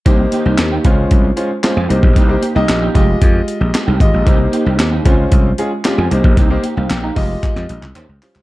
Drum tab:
HH |x-x-x-x-x-x-x-x-|x-x-x-x-x-x-x-x-|x-x-x-x-x-x-x-x-|x-x-x-o-x-x-x-o-|
CP |----x-------x---|----x-------x---|----x-------x---|----x---xx-xx-xx|
SD |----o-------o---|----o-------o---|----o-------o---|----o-----------|
BD |o-----o-o------o|o-----o-o-----o-|o-----o-o------o|o-----o-o-------|